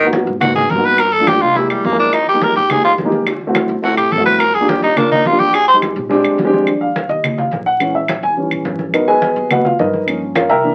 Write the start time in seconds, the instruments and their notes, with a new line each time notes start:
Already playing: upright bass G#1
0.05 grand piano A#3 B3 D#4 F#4
0.13 high bongo, high conga
0.27 upright bass G#2, high bongo, high conga
0.40 grand piano A#3 B3 D#4 F#4, tenor saxophone F#4, high bongo, high conga, low conga, claves
0.55 tenor saxophone G#4, high conga, low conga
0.70 upright bass G2, tenor saxophone A#4, high bongo, low bongo, high conga
0.76 grand piano A#3 B3 D#4 F#4
0.84 tenor saxophone B4, high bongo
0.98 tenor saxophone A#4, high bongo, high conga, claves
1.13 tenor saxophone A4, high bongo, high conga
1.20 grand piano A3 A#3 D4 F4
1.27 tenor saxophone G4, high bongo, high conga, claves
1.41 upright bass C2, tenor saxophone F4, high bongo, high conga
1.55 grand piano G#3 A#3 E4 G4, tenor saxophone E4, high bongo, high conga
1.70 upright bass E2, tenor saxophone G3, high conga, claves
1.84 upright bass F2, tenor saxophone A#3, high bongo, low bongo, high conga
1.91 grand piano G#3 A#3 E4 A#4
1.99 tenor saxophone D4, high bongo
2.13 tenor saxophone D#4, high bongo, high conga, claves
2.27 tenor saxophone G4, high bongo, high conga
2.34 grand piano G#3 A#3 D#4 G4
2.41 tenor saxophone A#4, high bongo, high conga
2.55 upright bass F2, tenor saxophone G4, high bongo, high conga
2.69 grand piano G#3 A#3 D#4 G4, tenor saxophone G#4, high bongo, high conga, low conga, claves
2.84 tenor saxophone F4, high conga
2.98 upright bass D2, high bongo, low bongo, high conga
3.04 grand piano G#3 A#3 D#4 G4
3.12 high bongo, high conga
3.27 high bongo, high conga, claves
3.41 high bongo, high conga
3.47 grand piano A3 C4 E4 F#4
3.55 high bongo, high conga, claves
3.69 upright bass D2, high bongo, high conga
3.82 grand piano A3 C4 E4 A4, tenor saxophone F#4, high bongo, high conga
3.97 upright bass A1, tenor saxophone G4, high conga, claves
4.11 upright bass G1, tenor saxophone A4, high bongo, low bongo, high conga
4.18 grand piano A3 C4 E4 F#4
4.25 tenor saxophone B4, high bongo, high conga
4.39 tenor saxophone A#4, high bongo, high conga, claves
4.55 tenor saxophone G#4, high bongo, high conga
4.60 grand piano A#3 D4 F4 G4
4.68 tenor saxophone G4, high bongo, high conga
4.82 upright bass D2, tenor saxophone D#4, high bongo, high conga
4.96 grand piano A#3 D4 F4 A#4, tenor saxophone D4, high bongo, high conga, low conga, claves
5.12 tenor saxophone D#4, high conga, low conga
5.25 upright bass F2, tenor saxophone F4, high bongo, low bongo, high conga
5.31 grand piano A#3 D4 F4 G4
5.40 tenor saxophone G4, high bongo, high conga
5.54 tenor saxophone G#4, high bongo, high conga, claves
5.68 tenor saxophone C5, high bongo, high conga
5.74 grand piano G#3 C4 D#4 G4
5.82 high bongo, high conga, claves
5.96 upright bass A#1, high bongo, high conga
6.09 grand piano G#3 C4 D4 G4, high bongo, high conga
6.24 upright bass D2, high conga, claves
6.38 upright bass D#2, high bongo, low bongo, high conga
6.45 grand piano G#3 C4 D4 G4
6.53 high bongo, high conga
6.66 grand piano F3 G3 D4, high conga, claves
6.81 grand piano F5, high conga
6.96 high conga
7.09 upright bass D#2, grand piano D#5, high conga
7.24 high conga, low conga, claves
7.38 grand piano F5, high conga, low conga
7.51 upright bass A#1, high conga
7.66 grand piano F#5
7.80 grand piano E3 G#3 C#4, high conga, claves
7.95 grand piano E5, high conga
8.08 high conga, claves
8.23 upright bass D#2, grand piano G#5, high conga
8.36 grand piano E3 G3 C#4, high conga
8.51 upright bass A#1, high conga, claves
8.65 upright bass G#1, high conga
8.79 high conga
8.93 grand piano F#3 B3 D#4 A#4 B4 D#5, high conga, claves
9.08 grand piano G#4 B4 D#5 G#5, high conga
9.22 high conga
9.36 upright bass D#2, high conga
9.51 grand piano F#3 A#3 B3 F#4 B4 D#5 F#5, high conga, low conga, claves
9.65 grand piano F4 F5, high conga, low conga
9.79 upright bass G2, grand piano D#4 A#4 B4 D#5, high conga
9.93 high conga
10.06 grand piano F3 A#3 C#4, high conga, claves
10.22 high conga
10.35 grand piano F4 A#4 C#5 F5, high conga, claves
10.49 upright bass C2, grand piano A#4 E5 G5 A#5, high conga
10.63 grand piano E3 A#3 D4, high conga